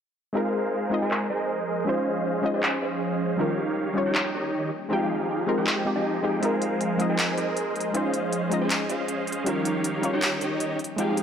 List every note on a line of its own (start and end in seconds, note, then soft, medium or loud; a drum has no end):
0.33 3.36 F3 medium
0.33 0.89 G#3 medium
0.33 1.00 G#3 medium
0.33 1.85 A#3 medium
0.33 0.89 C4 medium
0.33 0.90 D#4 medium
0.33 1.85 D#4 medium
0.33 0.90 F4 medium
0.33 3.36 G#4 medium
0.33 1.00 G#4 medium
0.33 1.00 A#4 medium
0.33 3.36 C5 medium
0.33 1.00 C5 medium
0.33 1.00 F5 medium
0.37 0.91 A#4 medium
0.90 1.84 G#3 medium
0.90 1.84 C4 medium
0.90 1.85 D#4 medium
0.90 1.85 F4 medium
0.94 1.86 D#5 loud
1.02 1.28 G#3 medium
1.02 1.28 G#4 medium
1.02 1.28 A#4 medium
1.02 1.28 C5 medium
1.02 1.28 G#5 loud
1.11 clap loud
1.30 1.85 G#3 medium
1.30 1.85 G#4 medium
1.30 1.85 A#4 medium
1.30 1.85 C5 medium
1.30 1.85 D#5 medium
1.85 2.41 G#3 medium
1.85 3.37 G#3 medium
1.85 2.41 C#4 medium
1.85 2.51 C#4 medium
1.85 3.37 C#4 medium
1.85 2.42 D#4 medium
1.85 2.42 F4 medium
1.85 2.51 G#4 medium
1.85 2.51 C5 medium
1.85 2.51 D#5 medium
1.85 2.51 F5 medium
1.89 2.43 C5 medium
2.42 3.36 G#3 medium
2.42 3.36 C#4 medium
2.42 3.37 D#4 medium
2.42 3.37 F4 medium
2.46 3.38 D#5 loud
2.54 2.80 C#4 medium
2.54 2.80 G#4 medium
2.54 2.80 C5 medium
2.54 2.80 D#5 medium
2.54 2.80 G#5 loud
2.63 clap loud
2.82 3.37 C#4 medium
2.82 3.37 G#4 medium
2.82 3.37 C5 medium
2.82 3.37 D#5 medium
2.82 3.37 F5 medium
3.37 4.70 D#3 medium
3.37 4.03 D#3 medium
3.37 3.92 G3 medium
3.37 4.70 G3 medium
3.37 4.70 A#3 medium
3.37 3.93 C#4 medium
3.37 4.70 C#4 medium
3.37 3.94 D#4 medium
3.37 4.03 D#4 medium
3.37 3.94 F4 medium
3.37 4.03 G4 medium
3.37 3.95 A#4 loud
3.37 4.03 C#5 medium
3.37 4.03 F5 medium
3.37 6.40 G5 medium
3.94 4.70 G3 medium
3.94 4.70 C#4 medium
3.94 4.71 D#4 medium
3.94 4.71 F4 medium
3.98 4.72 C#5 loud
4.06 4.32 D#3 medium
4.06 4.32 D#4 medium
4.06 4.32 G4 medium
4.06 4.32 C#5 medium
4.06 4.32 G5 loud
4.15 clap loud
4.34 4.71 D#3 medium
4.34 4.71 D#4 medium
4.34 4.71 G4 medium
4.34 4.71 C#5 medium
4.34 4.71 D#5 medium
4.72 9.42 F3 medium
4.72 6.41 G#3 medium
4.72 7.91 D#4 medium
4.72 9.42 C5 medium
4.89 5.55 F3 medium
4.89 5.45 G#3 medium
4.89 5.45 C4 medium
4.89 5.45 D#4 medium
4.89 5.55 D#4 medium
4.89 5.46 F4 medium
4.89 5.55 G4 medium
4.89 5.55 G#4 medium
4.89 5.55 F5 medium
4.93 5.47 G5 medium
5.47 5.83 G#3 medium
5.47 5.84 C4 medium
5.47 5.84 D#4 medium
5.47 5.84 F4 medium
5.47 5.84 A#4 loud
5.58 5.83 F3 medium
5.58 5.83 D#4 medium
5.58 5.83 G4 medium
5.58 5.83 G#4 medium
5.58 5.83 G5 loud
5.67 clap loud
5.85 6.21 G#3 medium
5.85 6.21 C4 medium
5.85 6.21 D#4 medium
5.85 6.22 F4 medium
5.85 6.22 G4 medium
5.96 6.21 F3 medium
5.96 6.21 D#4 medium
5.96 6.21 G4 medium
5.96 6.21 G#4 medium
5.96 6.21 D#5 loud
6.22 6.40 F3 medium
6.22 6.39 G#3 medium
6.22 6.40 C4 medium
6.22 6.40 D#4 medium
6.22 6.41 F4 medium
6.22 6.40 G4 medium
6.22 6.41 G4 loud
6.22 6.40 G#4 medium
6.22 6.40 G5 medium
6.40 6.96 G#3 medium
6.40 7.07 G#3 medium
6.40 7.93 A#3 medium
6.40 6.97 C4 medium
6.40 6.97 D#4 medium
6.40 6.98 F4 medium
6.40 9.43 G#4 medium
6.40 7.07 G#4 medium
6.40 7.07 A#4 medium
6.40 6.98 A#4 loud
6.40 7.07 C5 medium
6.40 7.07 F5 loud
6.40 closed hi-hat medium
6.62 closed hi-hat medium
6.81 closed hi-hat medium
6.98 7.91 G#3 medium
6.98 7.92 C4 medium
6.98 7.92 D#4 medium
6.98 7.93 F4 medium
6.98 closed hi-hat medium
7.02 7.93 D#5 loud
7.10 7.35 G#3 medium
7.10 7.35 G#4 medium
7.10 7.35 A#4 medium
7.10 7.35 C5 medium
7.10 7.35 G#5 loud
7.19 clap loud
7.19 closed hi-hat medium
7.38 7.92 G#3 medium
7.38 7.92 G#4 medium
7.38 7.92 A#4 medium
7.38 7.92 C5 medium
7.38 7.92 D#5 medium
7.38 closed hi-hat medium
7.57 closed hi-hat medium
7.76 closed hi-hat soft
7.80 closed hi-hat medium
7.93 8.48 G#3 medium
7.93 9.45 G#3 medium
7.93 8.49 C#4 medium
7.93 8.59 C#4 medium
7.93 10.77 C#4 medium
7.93 8.49 D#4 medium
7.93 8.50 F4 medium
7.93 8.59 G#4 medium
7.93 8.59 C5 medium
7.93 8.50 C5 loud
7.93 8.59 D#5 medium
7.93 8.59 F5 medium
7.93 closed hi-hat medium
8.14 closed hi-hat medium
8.33 closed hi-hat medium
8.49 9.43 G#3 loud
8.49 9.44 C#4 medium
8.49 9.44 D#4 medium
8.49 9.45 F4 medium
8.49 9.45 D#5 loud
8.49 closed hi-hat medium
8.61 8.87 C#4 medium
8.61 8.87 G#4 medium
8.61 8.87 C5 medium
8.61 8.87 D#5 medium
8.61 8.87 G#5 loud
8.70 clap loud
8.70 closed hi-hat medium
8.89 9.44 C#4 medium
8.89 9.44 G#4 medium
8.89 9.44 C5 medium
8.89 9.44 D#5 medium
8.89 9.44 F5 medium
8.89 closed hi-hat medium
9.08 closed hi-hat medium
9.27 closed hi-hat soft
9.32 closed hi-hat medium
9.44 10.11 D#3 medium
9.44 10.78 D#3 medium
9.44 10.00 G3 medium
9.44 10.78 G3 medium
9.44 10.78 A#3 medium
9.44 10.01 C#4 medium
9.44 10.11 D#4 medium
9.44 10.01 D#4 medium
9.44 10.02 F4 medium
9.44 10.11 G4 medium
9.44 10.11 C#5 medium
9.44 10.11 F5 loud
9.44 11.23 G5 medium
9.44 closed hi-hat medium
9.48 10.02 A#4 loud
9.65 closed hi-hat medium
9.84 closed hi-hat medium
10.01 10.77 G3 medium
10.01 10.78 C#4 medium
10.01 10.78 D#4 medium
10.01 10.79 F4 medium
10.01 10.79 C#5 loud
10.01 closed hi-hat medium
10.13 10.39 D#3 medium
10.13 10.39 D#4 medium
10.13 10.39 G4 medium
10.13 10.39 C#5 medium
10.13 10.39 G5 loud
10.22 clap loud
10.22 closed hi-hat medium
10.41 10.78 D#3 medium
10.41 10.78 D#4 medium
10.41 10.78 G4 medium
10.41 10.78 C#5 medium
10.41 10.78 D#5 medium
10.41 closed hi-hat medium
10.60 closed hi-hat medium
10.79 11.23 F3 medium
10.79 11.23 G#3 medium
10.79 11.23 C4 medium
10.79 11.23 D#4 medium
10.79 closed hi-hat soft
10.84 closed hi-hat medium
10.96 11.23 F3 medium
10.96 11.23 G#3 medium
10.96 11.23 C4 medium
10.96 11.23 D#4 medium
10.96 11.23 F4 medium
10.96 11.23 G4 medium
10.96 11.23 G#4 medium
10.96 11.23 F5 medium
10.96 11.23 G5 loud
10.96 closed hi-hat medium
11.17 closed hi-hat medium